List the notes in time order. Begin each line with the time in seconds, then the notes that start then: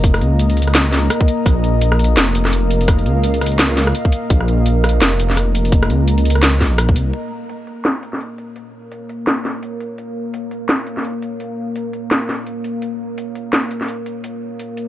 Already playing: F1 A#3 A#4 D#5 A#5
0.04 kick, closed hi-hat
0.14 cross-stick, open hi-hat
0.21 C#2, closed hi-hat
0.39 closed hi-hat
0.50 open hi-hat
0.57 closed hi-hat
0.62 closed hi-hat
0.68 cross-stick
0.75 snare, closed hi-hat
0.93 snare, closed hi-hat
1.10 cross-stick, closed hi-hat
1.21 kick
1.28 closed hi-hat
1.46 A#1, kick, cross-stick, closed hi-hat
1.64 closed hi-hat
1.81 F5, closed hi-hat
1.92 cross-stick
1.99 closed hi-hat
2.04 closed hi-hat
2.17 F1, snare, closed hi-hat
2.35 closed hi-hat
2.45 cross-stick, snare
2.53 closed hi-hat
2.71 closed hi-hat
2.81 open hi-hat
2.88 kick, cross-stick, closed hi-hat
2.98 open hi-hat
3.05 C#2, closed hi-hat
3.24 closed hi-hat
3.34 open hi-hat
3.41 cross-stick, closed hi-hat
3.46 closed hi-hat
3.52 open hi-hat
3.59 snare, closed hi-hat
3.77 snare, closed hi-hat
3.87 cross-stick
3.95 closed hi-hat
4.05 kick
4.12 closed hi-hat
4.30 A#1, kick, closed hi-hat
4.41 cross-stick
4.48 closed hi-hat
4.66 A#5, closed hi-hat
4.84 cross-stick, closed hi-hat
4.89 closed hi-hat
5.01 F1, snare, closed hi-hat
5.20 closed hi-hat
5.30 snare
5.37 cross-stick, closed hi-hat
5.55 closed hi-hat
5.65 open hi-hat
5.72 kick, closed hi-hat
5.83 cross-stick, open hi-hat
5.89 C#2, closed hi-hat
6.08 closed hi-hat
6.18 open hi-hat
6.25 closed hi-hat
6.30 closed hi-hat
6.35 cross-stick, open hi-hat
6.43 snare, closed hi-hat
6.61 kick, snare, open hi-hat
6.71 A#1
6.78 cross-stick, closed hi-hat
6.89 kick
6.96 C2, closed hi-hat
7.13 A#3, closed hi-hat
7.25 A#4
7.47 C#5 F5, closed hi-hat
7.67 closed hi-hat
7.85 snare, closed hi-hat
8.03 closed hi-hat
8.13 snare
8.21 closed hi-hat
8.38 closed hi-hat
8.56 closed hi-hat
8.92 closed hi-hat
9.09 closed hi-hat
9.27 snare, closed hi-hat
9.45 snare, closed hi-hat
9.63 closed hi-hat
9.80 closed hi-hat
9.98 closed hi-hat
10.34 closed hi-hat
10.51 closed hi-hat
10.69 snare, closed hi-hat
10.87 closed hi-hat
10.97 snare
11.05 closed hi-hat
11.22 closed hi-hat
11.40 closed hi-hat
11.76 closed hi-hat
11.93 closed hi-hat
12.11 snare, closed hi-hat
12.29 snare, closed hi-hat
12.47 closed hi-hat
12.64 closed hi-hat
12.82 closed hi-hat
13.18 closed hi-hat
13.35 closed hi-hat
13.53 snare, closed hi-hat
13.71 closed hi-hat
13.81 snare
13.88 closed hi-hat
14.06 closed hi-hat
14.24 closed hi-hat
14.59 closed hi-hat
14.77 closed hi-hat